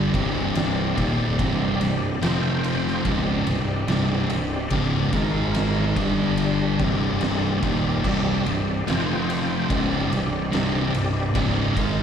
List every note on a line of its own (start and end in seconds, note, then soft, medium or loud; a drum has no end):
0.00 0.12 G2 loud
0.00 0.13 D3 loud
0.00 0.13 G3 loud
0.00 0.13 G3 medium
0.00 0.13 D4 medium
0.00 2.19 G4 medium
0.13 0.93 C1 medium
0.13 0.95 C2 medium
0.13 0.96 G2 loud
0.13 0.96 C3 loud
0.13 2.20 C4 medium
0.13 2.20 D5 medium
0.13 kick medium
0.13 ride medium
0.55 snare loud
0.55 ride loud
0.97 1.36 D#1 loud
0.97 1.37 D#2 medium
0.97 1.38 A#2 loud
0.97 1.38 D#3 loud
0.97 kick loud
0.97 ride medium
1.39 1.78 C1 loud
1.39 1.79 C2 medium
1.39 1.80 G2 loud
1.39 1.80 C3 loud
1.39 kick loud
1.39 ride loud
1.80 2.19 C1 medium
1.80 2.14 C2 medium
1.80 2.14 G2 medium
1.80 ride medium
2.21 3.01 F1 medium
2.21 3.04 F2 loud
2.21 3.04 C3 loud
2.21 3.04 F3 loud
2.21 3.05 F4 medium
2.21 3.05 C5 medium
2.21 3.05 G5 medium
2.21 snare loud
2.21 ride loud
2.64 ride medium
2.87 snare soft
3.05 3.44 C#1 loud
3.05 3.46 C#2 loud
3.05 3.46 G#2 loud
3.05 3.46 C#3 loud
3.05 5.12 C4 medium
3.05 5.12 G4 medium
3.05 5.12 D5 medium
3.05 kick loud
3.05 ride loud
3.47 3.86 C1 medium
3.47 3.80 C2 medium
3.47 3.80 G2 medium
3.47 ride medium
3.87 4.27 C1 loud
3.87 4.29 C2 loud
3.87 4.29 G2 loud
3.87 4.29 C3 loud
3.87 snare loud
3.87 ride loud
4.30 4.69 C1 medium
4.30 4.64 C2 medium
4.30 4.64 G2 medium
4.30 ride medium
4.70 5.10 C#1 loud
4.70 5.12 C#2 medium
4.70 5.12 G#2 loud
4.70 5.12 C#3 medium
4.70 kick loud
4.70 ride loud
5.13 5.92 G#1 loud
5.13 5.97 G#2 medium
5.13 5.97 D#3 loud
5.13 5.98 G#3 loud
5.13 5.97 G#3 medium
5.13 5.96 D#4 medium
5.13 5.96 A#4 medium
5.13 kick loud
5.13 ride medium
5.54 snare loud
5.54 ride loud
5.96 6.75 G1 medium
5.96 6.78 G2 loud
5.96 6.79 D3 loud
5.96 6.79 G3 medium
5.96 6.79 G3 loud
5.96 6.79 D4 medium
5.96 6.78 G4 medium
5.96 kick loud
5.96 ride medium
6.37 ride loud
6.79 7.59 C1 medium
6.79 7.61 C2 medium
6.79 7.61 G2 medium
6.79 7.62 C3 loud
6.79 8.85 C4 medium
6.79 8.85 G4 medium
6.79 8.85 D5 medium
6.79 kick loud
6.79 ride medium
7.21 snare loud
7.21 ride medium
7.62 8.01 D#1 loud
7.62 8.02 D#2 medium
7.62 8.02 A#2 medium
7.62 8.03 D#3 medium
7.62 kick loud
7.62 ride medium
8.04 8.43 C1 loud
8.04 8.44 C2 medium
8.04 8.45 G2 medium
8.04 8.45 C3 medium
8.04 kick loud
8.04 crash loud
8.45 8.84 C1 medium
8.45 8.79 C2 medium
8.45 8.79 G2 medium
8.45 ride medium
8.87 9.66 F1 medium
8.87 9.68 F2 medium
8.87 9.69 C3 loud
8.87 9.69 F3 medium
8.87 9.69 F4 medium
8.87 9.69 C5 medium
8.87 9.69 G5 medium
8.87 snare loud
8.87 ride loud
9.30 ride medium
9.69 10.08 C#1 medium
9.69 10.09 C#2 medium
9.69 10.10 G#2 loud
9.69 10.10 C#3 loud
9.69 11.75 C4 medium
9.69 11.74 G4 medium
9.69 11.74 D5 medium
9.69 kick loud
9.69 ride loud
10.10 10.49 C1 medium
10.10 10.44 C2 medium
10.10 10.45 G2 medium
10.10 ride medium
10.52 10.91 C1 loud
10.52 10.92 C2 loud
10.52 10.92 G2 loud
10.52 10.93 C3 loud
10.52 snare loud
10.52 ride medium
10.93 11.32 C1 medium
10.93 11.27 C2 medium
10.93 11.27 G2 medium
10.93 ride medium
11.35 11.73 C#1 loud
11.35 11.75 C#2 medium
11.35 11.74 G#2 medium
11.35 11.76 C#3 medium
11.35 kick loud
11.35 ride loud
11.76 12.03 G#1 medium
11.76 12.03 G#2 medium
11.76 12.03 D#3 medium
11.76 12.03 G#3 medium
11.76 12.03 D#4 medium
11.76 12.03 A#4 medium
11.76 kick loud
11.76 ride medium